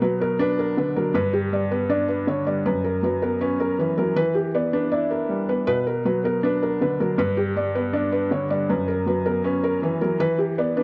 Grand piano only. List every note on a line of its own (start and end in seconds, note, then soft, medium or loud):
0.00 0.58 B2 loud
0.00 0.95 F#3 loud
0.20 1.15 B3 medium
0.39 1.15 D4 loud
0.77 1.15 D3 medium
0.96 1.15 F#3 medium
1.14 2.09 G2 loud
1.52 2.45 G3 medium
1.71 2.66 B3 medium
1.89 2.65 D4 medium
2.27 2.65 D3 medium
2.47 2.66 G3 medium
2.66 3.60 F#2 loud
3.03 3.96 F#3 medium
3.23 4.17 B3 medium
3.41 4.16 C#4 loud
3.79 4.15 E3 medium
3.98 4.17 F#3 medium
4.16 5.11 E3 loud
4.55 5.47 B3 loud
4.73 5.68 D4 loud
4.92 5.68 E4 loud
5.29 5.67 G3 medium
5.49 5.68 B3 medium
5.67 6.62 B2 loud
6.05 6.99 F#3 medium
6.24 7.18 B3 medium
6.43 7.19 D4 loud
6.81 7.19 D3 medium
7.00 7.19 F#3 medium
7.18 8.13 G2 loud
7.56 8.49 G3 medium
7.75 8.69 B3 medium
7.93 8.69 D4 loud
8.31 8.69 D3 medium
8.50 8.69 G3 medium
8.69 9.64 F#2 loud
9.06 10.00 F#3 medium
9.26 10.21 B3 medium
9.44 10.20 C#4 loud
9.82 10.18 E3 medium
10.02 10.20 F#3 medium
10.20 10.83 E3 loud
10.58 10.83 B3 loud
10.77 10.83 D4 loud